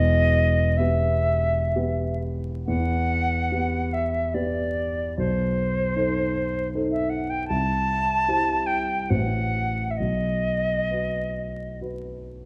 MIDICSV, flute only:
0, 0, Header, 1, 2, 480
1, 0, Start_track
1, 0, Key_signature, 1, "minor"
1, 0, Tempo, 1011804
1, 373, Tempo, 943396
1, 1333, Time_signature, 3, 2, 24, 8
1, 1333, Tempo, 834492
1, 2773, Tempo, 775194
1, 4693, Tempo, 826446
1, 5173, Tempo, 896861
1, 6966, End_track
2, 0, Start_track
2, 0, Title_t, "Flute"
2, 0, Program_c, 0, 73
2, 0, Note_on_c, 0, 75, 93
2, 365, Note_on_c, 0, 76, 72
2, 372, Note_off_c, 0, 75, 0
2, 1099, Note_off_c, 0, 76, 0
2, 1329, Note_on_c, 0, 78, 85
2, 2057, Note_on_c, 0, 76, 64
2, 2066, Note_off_c, 0, 78, 0
2, 2292, Note_on_c, 0, 74, 70
2, 2300, Note_off_c, 0, 76, 0
2, 2771, Note_off_c, 0, 74, 0
2, 2778, Note_on_c, 0, 72, 77
2, 3699, Note_off_c, 0, 72, 0
2, 3847, Note_on_c, 0, 76, 66
2, 3960, Note_on_c, 0, 78, 71
2, 3969, Note_off_c, 0, 76, 0
2, 4085, Note_on_c, 0, 79, 71
2, 4095, Note_off_c, 0, 78, 0
2, 4193, Note_off_c, 0, 79, 0
2, 4196, Note_on_c, 0, 81, 108
2, 4916, Note_on_c, 0, 79, 80
2, 4925, Note_off_c, 0, 81, 0
2, 5167, Note_on_c, 0, 78, 81
2, 5175, Note_off_c, 0, 79, 0
2, 5602, Note_on_c, 0, 76, 46
2, 5610, Note_off_c, 0, 78, 0
2, 5636, Note_on_c, 0, 75, 76
2, 5644, Note_off_c, 0, 76, 0
2, 6612, Note_off_c, 0, 75, 0
2, 6966, End_track
0, 0, End_of_file